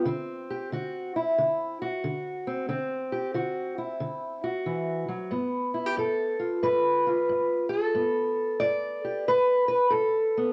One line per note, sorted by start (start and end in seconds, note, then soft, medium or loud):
0.05 0.67 D3 medium
0.05 2.46 C4 medium
0.50 0.72 G4 medium
0.72 1.33 D3 medium
0.72 1.16 F#4 medium
1.16 1.81 E4 medium
1.38 1.99 D3 medium
1.82 2.67 F#4 medium
2.04 2.65 D3 medium
2.47 2.67 C4 medium
2.69 3.30 D3 medium
2.69 5.30 C4 medium
3.12 3.34 G4 medium
3.34 3.96 D3 medium
3.34 3.78 F#4 medium
3.78 4.43 E4 medium
4.00 4.62 D3 medium
4.44 5.30 F#4 medium
4.66 5.08 E3 medium
5.08 5.32 F#3 medium
5.31 5.93 G2 medium
5.31 7.95 B3 soft
5.74 5.86 E4 soft
5.86 5.98 G4 soft
5.97 6.59 G2 medium
5.97 6.63 A4 medium
6.40 7.06 F4 soft
6.63 7.25 G2 medium
6.63 7.69 B4 medium
7.07 7.98 F4 soft
7.29 7.91 G2 medium
7.69 9.03 A4 medium
7.94 8.57 G2 medium
7.94 10.36 B3 soft
8.60 9.23 G2 medium
8.60 9.27 D5 loud
9.04 9.27 G4 soft
9.28 9.89 G2 medium
9.28 9.67 B4 loud
9.68 9.90 B4 medium
9.90 10.53 G2 medium
9.90 10.53 A4 medium
10.37 10.53 B3 soft